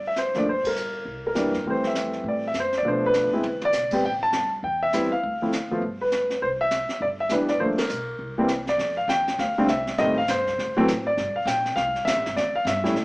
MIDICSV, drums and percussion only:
0, 0, Header, 1, 2, 480
1, 0, Start_track
1, 0, Key_signature, 0, "major"
1, 0, Tempo, 297619
1, 735, Time_signature, 4, 2, 24, 8
1, 14183, Key_signature, -1, "major"
1, 21042, End_track
2, 0, Start_track
2, 0, Title_t, "Drums"
2, 258, Note_on_c, 9, 44, 42
2, 262, Note_on_c, 9, 38, 44
2, 420, Note_off_c, 9, 44, 0
2, 423, Note_off_c, 9, 38, 0
2, 555, Note_on_c, 9, 38, 35
2, 716, Note_off_c, 9, 38, 0
2, 738, Note_on_c, 9, 25, 42
2, 1039, Note_on_c, 9, 36, 66
2, 1040, Note_on_c, 9, 51, 59
2, 1200, Note_off_c, 9, 36, 0
2, 1202, Note_off_c, 9, 51, 0
2, 1226, Note_on_c, 9, 44, 46
2, 1388, Note_off_c, 9, 44, 0
2, 1714, Note_off_c, 9, 25, 0
2, 1714, Note_on_c, 9, 25, 40
2, 2180, Note_on_c, 9, 44, 45
2, 2183, Note_on_c, 9, 38, 40
2, 2341, Note_off_c, 9, 44, 0
2, 2344, Note_off_c, 9, 38, 0
2, 2481, Note_on_c, 9, 38, 33
2, 2643, Note_off_c, 9, 38, 0
2, 2660, Note_off_c, 9, 25, 0
2, 2660, Note_on_c, 9, 25, 35
2, 2963, Note_on_c, 9, 38, 39
2, 3124, Note_off_c, 9, 38, 0
2, 3146, Note_on_c, 9, 44, 51
2, 3149, Note_on_c, 9, 38, 53
2, 3307, Note_off_c, 9, 44, 0
2, 3311, Note_off_c, 9, 38, 0
2, 3435, Note_on_c, 9, 38, 28
2, 3596, Note_off_c, 9, 38, 0
2, 3625, Note_off_c, 9, 25, 0
2, 3625, Note_on_c, 9, 25, 38
2, 4092, Note_on_c, 9, 44, 38
2, 4096, Note_on_c, 9, 38, 45
2, 4254, Note_off_c, 9, 44, 0
2, 4257, Note_off_c, 9, 38, 0
2, 4394, Note_on_c, 9, 38, 32
2, 4555, Note_off_c, 9, 38, 0
2, 4567, Note_off_c, 9, 25, 0
2, 4567, Note_on_c, 9, 25, 42
2, 5054, Note_on_c, 9, 44, 43
2, 5057, Note_on_c, 9, 38, 49
2, 5215, Note_off_c, 9, 44, 0
2, 5218, Note_off_c, 9, 38, 0
2, 5537, Note_on_c, 9, 47, 41
2, 5698, Note_off_c, 9, 47, 0
2, 5828, Note_on_c, 9, 47, 43
2, 5989, Note_off_c, 9, 47, 0
2, 6008, Note_on_c, 9, 44, 48
2, 6011, Note_on_c, 9, 38, 39
2, 6169, Note_off_c, 9, 44, 0
2, 6172, Note_off_c, 9, 38, 0
2, 6300, Note_on_c, 9, 49, 54
2, 6310, Note_on_c, 9, 36, 66
2, 6462, Note_off_c, 9, 49, 0
2, 6471, Note_off_c, 9, 36, 0
2, 6485, Note_off_c, 9, 25, 0
2, 6485, Note_on_c, 9, 25, 40
2, 6973, Note_on_c, 9, 44, 49
2, 6976, Note_on_c, 9, 38, 50
2, 7134, Note_off_c, 9, 44, 0
2, 7137, Note_off_c, 9, 38, 0
2, 7454, Note_off_c, 9, 25, 0
2, 7454, Note_on_c, 9, 25, 47
2, 7946, Note_on_c, 9, 44, 47
2, 7949, Note_on_c, 9, 38, 47
2, 8107, Note_off_c, 9, 44, 0
2, 8111, Note_off_c, 9, 38, 0
2, 8424, Note_off_c, 9, 25, 0
2, 8424, Note_on_c, 9, 25, 44
2, 8912, Note_on_c, 9, 44, 44
2, 8915, Note_on_c, 9, 38, 50
2, 9073, Note_off_c, 9, 44, 0
2, 9076, Note_off_c, 9, 38, 0
2, 9377, Note_off_c, 9, 25, 0
2, 9377, Note_on_c, 9, 25, 42
2, 9863, Note_on_c, 9, 44, 40
2, 9866, Note_on_c, 9, 38, 47
2, 10025, Note_off_c, 9, 44, 0
2, 10028, Note_off_c, 9, 38, 0
2, 10165, Note_on_c, 9, 38, 32
2, 10326, Note_off_c, 9, 38, 0
2, 10335, Note_off_c, 9, 25, 0
2, 10335, Note_on_c, 9, 25, 48
2, 10818, Note_on_c, 9, 44, 51
2, 10821, Note_on_c, 9, 38, 51
2, 10979, Note_off_c, 9, 44, 0
2, 10983, Note_off_c, 9, 38, 0
2, 11108, Note_on_c, 9, 38, 28
2, 11270, Note_off_c, 9, 38, 0
2, 11298, Note_off_c, 9, 25, 0
2, 11298, Note_on_c, 9, 25, 39
2, 11760, Note_on_c, 9, 44, 42
2, 11763, Note_on_c, 9, 38, 45
2, 11921, Note_off_c, 9, 44, 0
2, 11924, Note_off_c, 9, 38, 0
2, 12067, Note_on_c, 9, 38, 34
2, 12229, Note_off_c, 9, 38, 0
2, 12254, Note_off_c, 9, 25, 0
2, 12254, Note_on_c, 9, 25, 42
2, 12545, Note_on_c, 9, 51, 58
2, 12548, Note_on_c, 9, 38, 66
2, 12706, Note_off_c, 9, 51, 0
2, 12709, Note_off_c, 9, 38, 0
2, 12730, Note_on_c, 9, 44, 49
2, 12891, Note_off_c, 9, 44, 0
2, 13208, Note_off_c, 9, 25, 0
2, 13208, Note_on_c, 9, 25, 37
2, 13680, Note_on_c, 9, 44, 44
2, 13683, Note_on_c, 9, 38, 47
2, 13842, Note_off_c, 9, 44, 0
2, 13845, Note_off_c, 9, 38, 0
2, 13983, Note_on_c, 9, 38, 32
2, 14144, Note_off_c, 9, 38, 0
2, 14177, Note_off_c, 9, 25, 0
2, 14177, Note_on_c, 9, 25, 51
2, 14177, Note_on_c, 9, 38, 42
2, 14338, Note_off_c, 9, 38, 0
2, 14660, Note_on_c, 9, 44, 51
2, 14663, Note_on_c, 9, 38, 57
2, 14821, Note_off_c, 9, 44, 0
2, 14824, Note_off_c, 9, 38, 0
2, 14961, Note_on_c, 9, 38, 40
2, 15122, Note_off_c, 9, 38, 0
2, 15142, Note_off_c, 9, 25, 0
2, 15142, Note_on_c, 9, 25, 39
2, 15142, Note_on_c, 9, 38, 42
2, 15303, Note_off_c, 9, 38, 0
2, 15613, Note_on_c, 9, 44, 43
2, 15616, Note_on_c, 9, 38, 51
2, 15774, Note_off_c, 9, 44, 0
2, 15778, Note_off_c, 9, 38, 0
2, 15919, Note_on_c, 9, 38, 39
2, 16080, Note_off_c, 9, 38, 0
2, 16094, Note_off_c, 9, 25, 0
2, 16094, Note_on_c, 9, 25, 41
2, 16094, Note_on_c, 9, 38, 48
2, 16255, Note_off_c, 9, 38, 0
2, 16577, Note_on_c, 9, 44, 57
2, 16580, Note_on_c, 9, 38, 58
2, 16738, Note_off_c, 9, 44, 0
2, 16741, Note_off_c, 9, 38, 0
2, 16886, Note_on_c, 9, 36, 51
2, 16891, Note_on_c, 9, 38, 38
2, 17048, Note_off_c, 9, 36, 0
2, 17052, Note_off_c, 9, 38, 0
2, 17081, Note_off_c, 9, 25, 0
2, 17081, Note_on_c, 9, 25, 52
2, 17081, Note_on_c, 9, 38, 43
2, 17243, Note_off_c, 9, 38, 0
2, 17548, Note_on_c, 9, 44, 46
2, 17551, Note_on_c, 9, 38, 59
2, 17709, Note_off_c, 9, 44, 0
2, 17713, Note_off_c, 9, 38, 0
2, 18023, Note_off_c, 9, 25, 0
2, 18023, Note_on_c, 9, 25, 45
2, 18023, Note_on_c, 9, 38, 40
2, 18184, Note_off_c, 9, 38, 0
2, 18499, Note_on_c, 9, 44, 58
2, 18503, Note_on_c, 9, 38, 55
2, 18661, Note_off_c, 9, 44, 0
2, 18664, Note_off_c, 9, 38, 0
2, 18798, Note_on_c, 9, 38, 38
2, 18959, Note_off_c, 9, 38, 0
2, 18976, Note_off_c, 9, 25, 0
2, 18976, Note_on_c, 9, 25, 43
2, 18976, Note_on_c, 9, 38, 43
2, 19137, Note_off_c, 9, 38, 0
2, 19284, Note_on_c, 9, 38, 34
2, 19445, Note_off_c, 9, 38, 0
2, 19467, Note_on_c, 9, 44, 57
2, 19470, Note_on_c, 9, 38, 56
2, 19628, Note_off_c, 9, 44, 0
2, 19631, Note_off_c, 9, 38, 0
2, 19770, Note_on_c, 9, 38, 42
2, 19931, Note_off_c, 9, 38, 0
2, 19949, Note_off_c, 9, 25, 0
2, 19949, Note_on_c, 9, 25, 49
2, 19949, Note_on_c, 9, 38, 43
2, 20110, Note_off_c, 9, 38, 0
2, 20425, Note_on_c, 9, 44, 58
2, 20428, Note_on_c, 9, 38, 57
2, 20586, Note_off_c, 9, 44, 0
2, 20589, Note_off_c, 9, 38, 0
2, 20711, Note_on_c, 9, 36, 46
2, 20724, Note_on_c, 9, 38, 36
2, 20872, Note_off_c, 9, 36, 0
2, 20885, Note_off_c, 9, 38, 0
2, 20898, Note_off_c, 9, 25, 0
2, 20898, Note_on_c, 9, 25, 45
2, 20898, Note_on_c, 9, 38, 46
2, 21042, Note_off_c, 9, 25, 0
2, 21042, Note_off_c, 9, 38, 0
2, 21042, End_track
0, 0, End_of_file